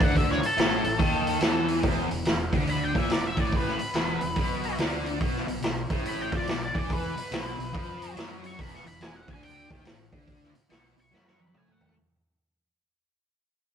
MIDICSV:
0, 0, Header, 1, 7, 480
1, 0, Start_track
1, 0, Tempo, 421941
1, 180, Time_signature, 4, 2, 24, 8
1, 15632, End_track
2, 0, Start_track
2, 0, Title_t, "Lead electric guitar"
2, 0, Program_c, 0, 29
2, 41, Note_on_c, 0, 78, 73
2, 186, Note_off_c, 0, 78, 0
2, 198, Note_on_c, 0, 76, 85
2, 344, Note_off_c, 0, 76, 0
2, 354, Note_on_c, 0, 73, 83
2, 502, Note_off_c, 0, 73, 0
2, 522, Note_on_c, 0, 69, 90
2, 1905, Note_off_c, 0, 69, 0
2, 3067, Note_on_c, 0, 83, 91
2, 3216, Note_off_c, 0, 83, 0
2, 3228, Note_on_c, 0, 79, 77
2, 3388, Note_off_c, 0, 79, 0
2, 3388, Note_on_c, 0, 76, 84
2, 3537, Note_off_c, 0, 76, 0
2, 3551, Note_on_c, 0, 74, 90
2, 3698, Note_off_c, 0, 74, 0
2, 3722, Note_on_c, 0, 76, 76
2, 3864, Note_off_c, 0, 76, 0
2, 3880, Note_on_c, 0, 74, 87
2, 4023, Note_off_c, 0, 74, 0
2, 4048, Note_on_c, 0, 71, 91
2, 5427, Note_off_c, 0, 71, 0
2, 6910, Note_on_c, 0, 83, 99
2, 7057, Note_off_c, 0, 83, 0
2, 7072, Note_on_c, 0, 79, 81
2, 7218, Note_off_c, 0, 79, 0
2, 7234, Note_on_c, 0, 74, 79
2, 7379, Note_off_c, 0, 74, 0
2, 7400, Note_on_c, 0, 74, 85
2, 7530, Note_off_c, 0, 74, 0
2, 7543, Note_on_c, 0, 74, 93
2, 7693, Note_off_c, 0, 74, 0
2, 7725, Note_on_c, 0, 74, 83
2, 7864, Note_off_c, 0, 74, 0
2, 7877, Note_on_c, 0, 71, 100
2, 9262, Note_off_c, 0, 71, 0
2, 9628, Note_on_c, 0, 85, 106
2, 9792, Note_off_c, 0, 85, 0
2, 9792, Note_on_c, 0, 83, 80
2, 9938, Note_off_c, 0, 83, 0
2, 9962, Note_on_c, 0, 85, 83
2, 10090, Note_off_c, 0, 85, 0
2, 10095, Note_on_c, 0, 83, 80
2, 10249, Note_off_c, 0, 83, 0
2, 10262, Note_on_c, 0, 80, 93
2, 10421, Note_off_c, 0, 80, 0
2, 10421, Note_on_c, 0, 78, 85
2, 10572, Note_off_c, 0, 78, 0
2, 10583, Note_on_c, 0, 80, 83
2, 10733, Note_off_c, 0, 80, 0
2, 10743, Note_on_c, 0, 79, 98
2, 11204, Note_off_c, 0, 79, 0
2, 12182, Note_on_c, 0, 85, 102
2, 12333, Note_off_c, 0, 85, 0
2, 12514, Note_on_c, 0, 85, 84
2, 12660, Note_off_c, 0, 85, 0
2, 12680, Note_on_c, 0, 83, 82
2, 12832, Note_off_c, 0, 83, 0
2, 12832, Note_on_c, 0, 85, 68
2, 12991, Note_off_c, 0, 85, 0
2, 12991, Note_on_c, 0, 83, 83
2, 13138, Note_off_c, 0, 83, 0
2, 13169, Note_on_c, 0, 80, 82
2, 13329, Note_off_c, 0, 80, 0
2, 13329, Note_on_c, 0, 78, 91
2, 13567, Note_off_c, 0, 78, 0
2, 15632, End_track
3, 0, Start_track
3, 0, Title_t, "Overdriven electric guitar"
3, 0, Program_c, 1, 29
3, 2, Note_on_c, 1, 50, 110
3, 474, Note_off_c, 1, 50, 0
3, 651, Note_on_c, 1, 45, 100
3, 945, Note_off_c, 1, 45, 0
3, 959, Note_on_c, 1, 45, 76
3, 1120, Note_off_c, 1, 45, 0
3, 1120, Note_on_c, 1, 51, 102
3, 1603, Note_off_c, 1, 51, 0
3, 1611, Note_on_c, 1, 52, 102
3, 2086, Note_on_c, 1, 40, 99
3, 2088, Note_off_c, 1, 52, 0
3, 2390, Note_off_c, 1, 40, 0
3, 2402, Note_on_c, 1, 40, 75
3, 2540, Note_off_c, 1, 40, 0
3, 2570, Note_on_c, 1, 40, 67
3, 2819, Note_off_c, 1, 40, 0
3, 2867, Note_on_c, 1, 50, 107
3, 3345, Note_off_c, 1, 50, 0
3, 3355, Note_on_c, 1, 46, 103
3, 3525, Note_off_c, 1, 46, 0
3, 3525, Note_on_c, 1, 40, 77
3, 3777, Note_off_c, 1, 40, 0
3, 3832, Note_on_c, 1, 45, 105
3, 4308, Note_off_c, 1, 45, 0
3, 4497, Note_on_c, 1, 40, 98
3, 4786, Note_off_c, 1, 40, 0
3, 4799, Note_on_c, 1, 40, 81
3, 4938, Note_off_c, 1, 40, 0
3, 4966, Note_on_c, 1, 47, 103
3, 5444, Note_off_c, 1, 47, 0
3, 5457, Note_on_c, 1, 50, 99
3, 5924, Note_off_c, 1, 50, 0
3, 5928, Note_on_c, 1, 47, 94
3, 6216, Note_off_c, 1, 47, 0
3, 6230, Note_on_c, 1, 47, 70
3, 6373, Note_off_c, 1, 47, 0
3, 6402, Note_on_c, 1, 47, 67
3, 6654, Note_off_c, 1, 47, 0
3, 6721, Note_on_c, 1, 45, 106
3, 7192, Note_off_c, 1, 45, 0
3, 7199, Note_on_c, 1, 53, 94
3, 7366, Note_off_c, 1, 53, 0
3, 7379, Note_on_c, 1, 47, 67
3, 7622, Note_off_c, 1, 47, 0
3, 7675, Note_on_c, 1, 52, 100
3, 8149, Note_off_c, 1, 52, 0
3, 8323, Note_on_c, 1, 47, 97
3, 8620, Note_off_c, 1, 47, 0
3, 8634, Note_on_c, 1, 47, 77
3, 8774, Note_off_c, 1, 47, 0
3, 8795, Note_on_c, 1, 53, 107
3, 9277, Note_off_c, 1, 53, 0
3, 9282, Note_on_c, 1, 54, 101
3, 9762, Note_off_c, 1, 54, 0
3, 9771, Note_on_c, 1, 40, 103
3, 10061, Note_off_c, 1, 40, 0
3, 10074, Note_on_c, 1, 40, 72
3, 10215, Note_off_c, 1, 40, 0
3, 10247, Note_on_c, 1, 40, 74
3, 10497, Note_off_c, 1, 40, 0
3, 10551, Note_on_c, 1, 50, 112
3, 11027, Note_off_c, 1, 50, 0
3, 11037, Note_on_c, 1, 51, 104
3, 11205, Note_off_c, 1, 51, 0
3, 11210, Note_on_c, 1, 45, 66
3, 11459, Note_off_c, 1, 45, 0
3, 11519, Note_on_c, 1, 50, 106
3, 11991, Note_off_c, 1, 50, 0
3, 12166, Note_on_c, 1, 47, 101
3, 12462, Note_off_c, 1, 47, 0
3, 12476, Note_on_c, 1, 47, 80
3, 12616, Note_off_c, 1, 47, 0
3, 12642, Note_on_c, 1, 54, 105
3, 13123, Note_off_c, 1, 54, 0
3, 13124, Note_on_c, 1, 57, 100
3, 13604, Note_off_c, 1, 57, 0
3, 15632, End_track
4, 0, Start_track
4, 0, Title_t, "Fingered electric bass"
4, 0, Program_c, 2, 33
4, 4, Note_on_c, 2, 38, 95
4, 452, Note_off_c, 2, 38, 0
4, 659, Note_on_c, 2, 33, 82
4, 946, Note_off_c, 2, 33, 0
4, 963, Note_on_c, 2, 33, 77
4, 1124, Note_off_c, 2, 33, 0
4, 1130, Note_on_c, 2, 39, 96
4, 1580, Note_off_c, 2, 39, 0
4, 1614, Note_on_c, 2, 40, 92
4, 2061, Note_off_c, 2, 40, 0
4, 2083, Note_on_c, 2, 28, 95
4, 2376, Note_off_c, 2, 28, 0
4, 2397, Note_on_c, 2, 28, 77
4, 2559, Note_off_c, 2, 28, 0
4, 2565, Note_on_c, 2, 28, 77
4, 2857, Note_off_c, 2, 28, 0
4, 2874, Note_on_c, 2, 38, 92
4, 3325, Note_off_c, 2, 38, 0
4, 3359, Note_on_c, 2, 34, 89
4, 3511, Note_off_c, 2, 34, 0
4, 3518, Note_on_c, 2, 28, 75
4, 3812, Note_off_c, 2, 28, 0
4, 3832, Note_on_c, 2, 33, 97
4, 4283, Note_off_c, 2, 33, 0
4, 4480, Note_on_c, 2, 28, 92
4, 4773, Note_off_c, 2, 28, 0
4, 4797, Note_on_c, 2, 28, 73
4, 4955, Note_off_c, 2, 28, 0
4, 4962, Note_on_c, 2, 35, 93
4, 5413, Note_off_c, 2, 35, 0
4, 5437, Note_on_c, 2, 38, 90
4, 5890, Note_off_c, 2, 38, 0
4, 5920, Note_on_c, 2, 35, 92
4, 6213, Note_off_c, 2, 35, 0
4, 6234, Note_on_c, 2, 35, 72
4, 6396, Note_off_c, 2, 35, 0
4, 6404, Note_on_c, 2, 35, 74
4, 6695, Note_off_c, 2, 35, 0
4, 6714, Note_on_c, 2, 33, 98
4, 7164, Note_off_c, 2, 33, 0
4, 7194, Note_on_c, 2, 41, 98
4, 7357, Note_off_c, 2, 41, 0
4, 7371, Note_on_c, 2, 35, 79
4, 7658, Note_off_c, 2, 35, 0
4, 7674, Note_on_c, 2, 40, 92
4, 8124, Note_off_c, 2, 40, 0
4, 8322, Note_on_c, 2, 35, 86
4, 8614, Note_off_c, 2, 35, 0
4, 8634, Note_on_c, 2, 35, 80
4, 8796, Note_off_c, 2, 35, 0
4, 8811, Note_on_c, 2, 41, 97
4, 9258, Note_off_c, 2, 41, 0
4, 9292, Note_on_c, 2, 42, 91
4, 9739, Note_off_c, 2, 42, 0
4, 9774, Note_on_c, 2, 28, 93
4, 10061, Note_off_c, 2, 28, 0
4, 10077, Note_on_c, 2, 28, 74
4, 10239, Note_off_c, 2, 28, 0
4, 10249, Note_on_c, 2, 28, 72
4, 10538, Note_off_c, 2, 28, 0
4, 10556, Note_on_c, 2, 38, 89
4, 11005, Note_off_c, 2, 38, 0
4, 11038, Note_on_c, 2, 39, 93
4, 11199, Note_off_c, 2, 39, 0
4, 11220, Note_on_c, 2, 33, 79
4, 11504, Note_off_c, 2, 33, 0
4, 11517, Note_on_c, 2, 38, 93
4, 11966, Note_off_c, 2, 38, 0
4, 12179, Note_on_c, 2, 35, 96
4, 12464, Note_off_c, 2, 35, 0
4, 12494, Note_on_c, 2, 35, 77
4, 12648, Note_off_c, 2, 35, 0
4, 12664, Note_on_c, 2, 42, 93
4, 13106, Note_off_c, 2, 42, 0
4, 13138, Note_on_c, 2, 45, 85
4, 13583, Note_off_c, 2, 45, 0
4, 15632, End_track
5, 0, Start_track
5, 0, Title_t, "Muted fingered electric bass strokes"
5, 486, Note_on_c, 9, 29, 36
5, 600, Note_off_c, 9, 29, 0
5, 4319, Note_on_c, 9, 29, 37
5, 4433, Note_off_c, 9, 29, 0
5, 8162, Note_on_c, 9, 29, 39
5, 8276, Note_off_c, 9, 29, 0
5, 12009, Note_on_c, 9, 29, 38
5, 12123, Note_off_c, 9, 29, 0
5, 15632, End_track
6, 0, Start_track
6, 0, Title_t, "Muted overdriven electric guitar strokes"
6, 479, Note_on_c, 9, 29, 54
6, 592, Note_off_c, 9, 29, 0
6, 4318, Note_on_c, 9, 29, 54
6, 4432, Note_off_c, 9, 29, 0
6, 8158, Note_on_c, 9, 29, 51
6, 8272, Note_off_c, 9, 29, 0
6, 12000, Note_on_c, 9, 29, 59
6, 12113, Note_off_c, 9, 29, 0
6, 15632, End_track
7, 0, Start_track
7, 0, Title_t, "Drums"
7, 6, Note_on_c, 9, 36, 110
7, 9, Note_on_c, 9, 46, 59
7, 120, Note_off_c, 9, 36, 0
7, 123, Note_off_c, 9, 46, 0
7, 178, Note_on_c, 9, 36, 88
7, 183, Note_on_c, 9, 46, 77
7, 292, Note_off_c, 9, 36, 0
7, 297, Note_off_c, 9, 46, 0
7, 356, Note_on_c, 9, 38, 29
7, 470, Note_off_c, 9, 38, 0
7, 491, Note_on_c, 9, 46, 58
7, 605, Note_off_c, 9, 46, 0
7, 659, Note_on_c, 9, 46, 73
7, 678, Note_on_c, 9, 38, 107
7, 773, Note_off_c, 9, 46, 0
7, 792, Note_off_c, 9, 38, 0
7, 960, Note_on_c, 9, 46, 54
7, 1074, Note_off_c, 9, 46, 0
7, 1131, Note_on_c, 9, 36, 102
7, 1134, Note_on_c, 9, 46, 66
7, 1245, Note_off_c, 9, 36, 0
7, 1248, Note_off_c, 9, 46, 0
7, 1443, Note_on_c, 9, 46, 55
7, 1557, Note_off_c, 9, 46, 0
7, 1600, Note_on_c, 9, 46, 72
7, 1620, Note_on_c, 9, 38, 103
7, 1714, Note_off_c, 9, 46, 0
7, 1733, Note_off_c, 9, 38, 0
7, 1915, Note_on_c, 9, 46, 52
7, 2029, Note_off_c, 9, 46, 0
7, 2083, Note_on_c, 9, 46, 65
7, 2087, Note_on_c, 9, 36, 97
7, 2197, Note_off_c, 9, 46, 0
7, 2201, Note_off_c, 9, 36, 0
7, 2400, Note_on_c, 9, 46, 53
7, 2514, Note_off_c, 9, 46, 0
7, 2563, Note_on_c, 9, 46, 72
7, 2582, Note_on_c, 9, 38, 107
7, 2677, Note_off_c, 9, 46, 0
7, 2696, Note_off_c, 9, 38, 0
7, 2876, Note_on_c, 9, 36, 93
7, 2878, Note_on_c, 9, 46, 55
7, 2989, Note_off_c, 9, 36, 0
7, 2991, Note_off_c, 9, 46, 0
7, 3040, Note_on_c, 9, 46, 67
7, 3154, Note_off_c, 9, 46, 0
7, 3357, Note_on_c, 9, 36, 98
7, 3362, Note_on_c, 9, 46, 55
7, 3471, Note_off_c, 9, 36, 0
7, 3476, Note_off_c, 9, 46, 0
7, 3524, Note_on_c, 9, 46, 77
7, 3544, Note_on_c, 9, 38, 114
7, 3638, Note_off_c, 9, 46, 0
7, 3657, Note_off_c, 9, 38, 0
7, 3832, Note_on_c, 9, 46, 59
7, 3836, Note_on_c, 9, 36, 96
7, 3946, Note_off_c, 9, 46, 0
7, 3950, Note_off_c, 9, 36, 0
7, 4007, Note_on_c, 9, 46, 74
7, 4010, Note_on_c, 9, 36, 104
7, 4121, Note_off_c, 9, 46, 0
7, 4124, Note_off_c, 9, 36, 0
7, 4182, Note_on_c, 9, 38, 30
7, 4296, Note_off_c, 9, 38, 0
7, 4312, Note_on_c, 9, 46, 60
7, 4426, Note_off_c, 9, 46, 0
7, 4479, Note_on_c, 9, 46, 74
7, 4498, Note_on_c, 9, 38, 110
7, 4592, Note_off_c, 9, 46, 0
7, 4612, Note_off_c, 9, 38, 0
7, 4788, Note_on_c, 9, 46, 57
7, 4902, Note_off_c, 9, 46, 0
7, 4959, Note_on_c, 9, 46, 79
7, 4965, Note_on_c, 9, 36, 94
7, 5072, Note_off_c, 9, 46, 0
7, 5078, Note_off_c, 9, 36, 0
7, 5273, Note_on_c, 9, 46, 56
7, 5387, Note_off_c, 9, 46, 0
7, 5442, Note_on_c, 9, 46, 77
7, 5462, Note_on_c, 9, 38, 109
7, 5556, Note_off_c, 9, 46, 0
7, 5575, Note_off_c, 9, 38, 0
7, 5757, Note_on_c, 9, 46, 52
7, 5870, Note_off_c, 9, 46, 0
7, 5922, Note_on_c, 9, 46, 73
7, 5926, Note_on_c, 9, 36, 94
7, 6036, Note_off_c, 9, 46, 0
7, 6040, Note_off_c, 9, 36, 0
7, 6100, Note_on_c, 9, 38, 32
7, 6214, Note_off_c, 9, 38, 0
7, 6235, Note_on_c, 9, 46, 54
7, 6349, Note_off_c, 9, 46, 0
7, 6398, Note_on_c, 9, 46, 68
7, 6417, Note_on_c, 9, 38, 115
7, 6511, Note_off_c, 9, 46, 0
7, 6531, Note_off_c, 9, 38, 0
7, 6711, Note_on_c, 9, 46, 55
7, 6714, Note_on_c, 9, 36, 96
7, 6825, Note_off_c, 9, 46, 0
7, 6827, Note_off_c, 9, 36, 0
7, 6889, Note_on_c, 9, 46, 69
7, 7002, Note_off_c, 9, 46, 0
7, 7190, Note_on_c, 9, 46, 55
7, 7194, Note_on_c, 9, 36, 103
7, 7303, Note_off_c, 9, 46, 0
7, 7308, Note_off_c, 9, 36, 0
7, 7365, Note_on_c, 9, 46, 73
7, 7385, Note_on_c, 9, 38, 113
7, 7479, Note_off_c, 9, 46, 0
7, 7498, Note_off_c, 9, 38, 0
7, 7679, Note_on_c, 9, 36, 100
7, 7683, Note_on_c, 9, 46, 52
7, 7793, Note_off_c, 9, 36, 0
7, 7796, Note_off_c, 9, 46, 0
7, 7848, Note_on_c, 9, 46, 73
7, 7850, Note_on_c, 9, 36, 95
7, 7962, Note_off_c, 9, 46, 0
7, 7964, Note_off_c, 9, 36, 0
7, 8161, Note_on_c, 9, 46, 60
7, 8275, Note_off_c, 9, 46, 0
7, 8325, Note_on_c, 9, 46, 82
7, 8345, Note_on_c, 9, 38, 115
7, 8439, Note_off_c, 9, 46, 0
7, 8458, Note_off_c, 9, 38, 0
7, 8645, Note_on_c, 9, 46, 57
7, 8759, Note_off_c, 9, 46, 0
7, 8812, Note_on_c, 9, 36, 106
7, 8812, Note_on_c, 9, 46, 77
7, 8925, Note_off_c, 9, 36, 0
7, 8925, Note_off_c, 9, 46, 0
7, 9122, Note_on_c, 9, 46, 62
7, 9236, Note_off_c, 9, 46, 0
7, 9293, Note_on_c, 9, 46, 79
7, 9312, Note_on_c, 9, 38, 111
7, 9407, Note_off_c, 9, 46, 0
7, 9426, Note_off_c, 9, 38, 0
7, 9598, Note_on_c, 9, 46, 57
7, 9712, Note_off_c, 9, 46, 0
7, 9771, Note_on_c, 9, 36, 94
7, 9773, Note_on_c, 9, 46, 76
7, 9885, Note_off_c, 9, 36, 0
7, 9887, Note_off_c, 9, 46, 0
7, 9949, Note_on_c, 9, 38, 31
7, 10063, Note_off_c, 9, 38, 0
7, 10085, Note_on_c, 9, 46, 55
7, 10198, Note_off_c, 9, 46, 0
7, 10248, Note_on_c, 9, 46, 72
7, 10267, Note_on_c, 9, 38, 106
7, 10362, Note_off_c, 9, 46, 0
7, 10381, Note_off_c, 9, 38, 0
7, 10558, Note_on_c, 9, 46, 50
7, 10559, Note_on_c, 9, 36, 99
7, 10672, Note_off_c, 9, 46, 0
7, 10673, Note_off_c, 9, 36, 0
7, 10728, Note_on_c, 9, 46, 72
7, 10842, Note_off_c, 9, 46, 0
7, 11041, Note_on_c, 9, 36, 99
7, 11042, Note_on_c, 9, 46, 53
7, 11155, Note_off_c, 9, 36, 0
7, 11155, Note_off_c, 9, 46, 0
7, 11209, Note_on_c, 9, 46, 73
7, 11228, Note_on_c, 9, 38, 113
7, 11323, Note_off_c, 9, 46, 0
7, 11342, Note_off_c, 9, 38, 0
7, 11519, Note_on_c, 9, 36, 99
7, 11522, Note_on_c, 9, 46, 56
7, 11633, Note_off_c, 9, 36, 0
7, 11635, Note_off_c, 9, 46, 0
7, 11691, Note_on_c, 9, 36, 94
7, 11694, Note_on_c, 9, 46, 66
7, 11805, Note_off_c, 9, 36, 0
7, 11808, Note_off_c, 9, 46, 0
7, 11870, Note_on_c, 9, 38, 32
7, 11984, Note_off_c, 9, 38, 0
7, 12001, Note_on_c, 9, 46, 55
7, 12114, Note_off_c, 9, 46, 0
7, 12171, Note_on_c, 9, 46, 72
7, 12191, Note_on_c, 9, 38, 111
7, 12285, Note_off_c, 9, 46, 0
7, 12304, Note_off_c, 9, 38, 0
7, 12487, Note_on_c, 9, 46, 51
7, 12600, Note_off_c, 9, 46, 0
7, 12670, Note_on_c, 9, 38, 57
7, 12783, Note_off_c, 9, 38, 0
7, 12821, Note_on_c, 9, 38, 53
7, 12935, Note_off_c, 9, 38, 0
7, 12962, Note_on_c, 9, 48, 72
7, 13048, Note_off_c, 9, 48, 0
7, 13048, Note_on_c, 9, 48, 58
7, 13130, Note_on_c, 9, 47, 84
7, 13161, Note_off_c, 9, 48, 0
7, 13244, Note_off_c, 9, 47, 0
7, 13288, Note_on_c, 9, 45, 75
7, 13402, Note_off_c, 9, 45, 0
7, 13433, Note_on_c, 9, 43, 102
7, 13524, Note_off_c, 9, 43, 0
7, 13524, Note_on_c, 9, 43, 82
7, 13638, Note_off_c, 9, 43, 0
7, 15632, End_track
0, 0, End_of_file